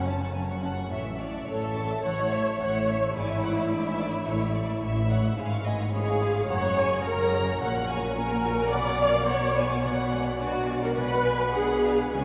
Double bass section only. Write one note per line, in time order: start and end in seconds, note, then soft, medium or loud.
0.00 0.28 F#1 soft
0.34 0.85 F#1 soft
0.91 1.41 A1 medium
1.48 1.98 A1 soft
2.04 2.54 A1 soft
2.60 3.10 A1 medium
3.16 3.65 G#1 medium
3.71 4.20 G#1 medium
4.27 4.76 A1 medium
4.83 5.32 A1 medium
5.39 6.45 G#1 medium
6.49 7.61 F#1 medium
7.61 8.70 A#1 medium
8.72 12.15 B1 medium
12.14 12.24 C#2 soft